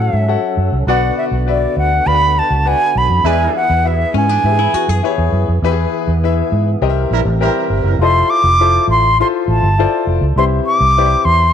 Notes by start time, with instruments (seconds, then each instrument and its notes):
Already playing: tonewheel organ F#3 C#4 A4, grand piano F#4 A4 C#5 F#5
0.02 flute E5
0.13 fingered electric bass G#2
0.28 grand piano F#4 A4 C#5 F#5
0.57 fingered electric bass F#2
0.72 fingered electric bass C2
0.87 fingered electric bass B1, grand piano B2 F#4 B4 D5 F#5, tonewheel organ D3 B3 F#4, horn section B3 F#4 D5, flute F#5
1.18 flute E5
1.31 fingered electric bass B1
1.47 grand piano F#4 B4 D5 E5, flute D5
1.76 fingered electric bass D2, flute F#5
2.06 fingered electric bass D2, grand piano F#4 B4 D5 F5, flute B5
2.15 grand piano F#5
2.39 flute A5
2.50 fingered electric bass C#2
2.65 grand piano F#4 B4 D5 F#5, flute G#5
2.96 fingered electric bass B1, flute B5
3.09 fingered electric bass F2
3.23 fingered electric bass E2, tonewheel organ E3 G#4, grand piano E3 E4 G#4 B4 D5, horn section G#3 E4 B4, flute G#5
3.33 grand piano E5
3.56 flute F#5
3.70 fingered electric bass E2
3.84 grand piano E4 F#4 B4 E5, flute E5
3.91 grand piano G#4
4.14 fingered electric bass G#2, hollow-body jazz guitar C#4, flute G#5
4.29 hollow-body jazz guitar D4
4.44 fingered electric bass G#2, grand piano E4 G4 B4 E5
4.51 grand piano G#4
4.59 hollow-body jazz guitar E4
4.74 hollow-body jazz guitar F#4, muted fingered electric bass stroke
4.88 fingered electric bass F#2, hollow-body jazz guitar G#4
5.03 grand piano E4 G4 B4 C#5
5.10 grand piano G#4
5.18 fingered electric bass E2
5.32 fingered electric bass F#2
5.48 fingered electric bass F2
5.62 fingered electric bass E2, grand piano E3 E4 G4 B4 E5, tonewheel organ E3 B3 G#4
5.71 grand piano G#4
6.07 fingered electric bass E2
6.24 grand piano E4 G#4 B4 E5
6.52 fingered electric bass G#2
6.82 fingered electric bass C2, grand piano C3 G4 A#4 C5 D#5, tonewheel organ C4 A#4
6.89 grand piano E5
7.11 fingered electric bass A#1, horn section G3 E4 A#4
7.25 fingered electric bass A1
7.40 horn section G3 E4 A#4, grand piano G4 A#4 C5 E5
7.70 fingered electric bass G1
7.84 fingered electric bass F#1
7.99 fingered electric bass F1, grand piano E4 F4 A4 C5, flute C6
8.03 grand piano D#5
8.10 grand piano E5
8.30 flute D6
8.44 fingered electric bass F1
8.60 grand piano E4 F4 A4 C5 E5
8.88 fingered electric bass A1, flute C6
9.20 grand piano E4 F4 A4 C5 E5, flute C6
9.48 fingered electric bass A1, flute A5
9.63 fingered electric bass G1
9.78 grand piano E4 F4 A4 C5 D5
10.07 fingered electric bass F1
10.21 fingered electric bass C#2
10.36 fingered electric bass C2, grand piano C3 E4 G4 B4 C5 E5, flute C6
10.66 flute D6
10.80 fingered electric bass C2
10.97 grand piano E4 G4 B4 C5 D5
11.06 grand piano E5
11.25 fingered electric bass E2, flute C6